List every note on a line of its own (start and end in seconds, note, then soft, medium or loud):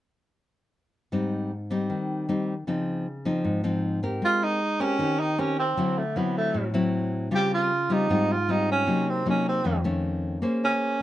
1.12 1.88 G#2 medium
1.12 1.50 G3 soft
1.12 1.51 C4 soft
1.12 1.51 D#4 soft
1.70 2.25 G3 medium
1.70 2.25 C4 medium
1.70 2.26 D#4 medium
1.90 2.65 D#3 medium
2.29 2.53 G3 soft
2.29 2.53 C4 soft
2.29 2.54 D#4 medium
2.67 3.43 C#3 medium
2.67 3.06 F3 soft
2.67 3.06 C4 soft
2.67 3.06 D#4 medium
3.25 3.61 F3 medium
3.25 3.61 C4 medium
3.25 3.61 D#4 medium
3.44 4.20 G#2 medium
3.64 3.99 F3 medium
3.64 3.99 C4 medium
3.64 4.00 D#4 medium
4.03 4.59 C4 medium
4.03 4.59 G4 soft
4.03 4.60 A#4 medium
4.22 4.97 G#3 medium
4.22 4.45 F4 loud
4.43 4.82 D#4 medium
4.80 4.96 C4 medium
4.80 5.21 C#4 medium
4.80 4.96 G4 medium
4.80 4.97 A#4 medium
4.99 5.75 D#3 medium
4.99 5.35 C4 soft
4.99 5.35 G4 medium
4.99 5.35 A#4 soft
5.20 5.41 D#4 medium
5.38 5.64 C4 soft
5.38 5.58 C#4 medium
5.38 5.64 G4 soft
5.38 5.65 A#4 medium
5.59 6.00 C4 medium
5.77 6.53 D3 medium
5.77 6.02 F#3 soft
5.77 6.02 C4 medium
5.77 6.02 E4 medium
5.98 6.19 A3 medium
6.16 6.71 F#3 soft
6.16 6.36 B3 medium
6.16 6.71 C4 soft
6.16 6.71 E4 medium
6.38 6.72 A3 medium
6.54 7.30 A2 medium
6.74 7.29 F#3 medium
6.74 7.29 C4 medium
6.74 7.29 E4 medium
7.31 8.07 C#3 medium
7.31 7.70 G3 medium
7.31 7.70 C4 medium
7.31 7.70 F4 medium
7.35 7.52 G4 loud
7.54 7.95 F4 medium
7.90 8.06 G3 medium
7.90 8.06 C4 medium
7.90 8.33 D#4 medium
7.90 8.06 F4 medium
8.09 8.85 G#2 medium
8.09 8.34 G3 soft
8.09 8.34 C4 medium
8.09 8.35 F4 medium
8.32 8.52 F4 medium
8.49 8.86 G3 soft
8.49 8.86 C4 soft
8.49 8.69 D#4 medium
8.49 8.86 F4 medium
8.71 9.11 C#4 medium
8.86 9.62 C3 medium
8.86 9.22 F#3 medium
8.86 9.23 A#3 soft
8.86 9.23 D#4 medium
9.09 9.27 C4 medium
9.26 9.63 F#3 soft
9.26 9.63 A#3 medium
9.26 9.46 C#4 medium
9.26 9.63 D#4 soft
9.49 9.83 C4 medium
9.64 10.40 F2 medium
9.64 9.76 D#3 soft
9.64 9.76 A3 soft
9.64 9.76 C#4 medium
9.84 10.39 D#3 medium
9.84 10.39 A3 medium
9.84 10.39 C#4 medium
10.42 11.02 A#3 medium
10.42 10.97 C#4 soft
10.42 10.97 G#4 medium
10.42 10.97 C5 medium
10.64 11.02 C#4 medium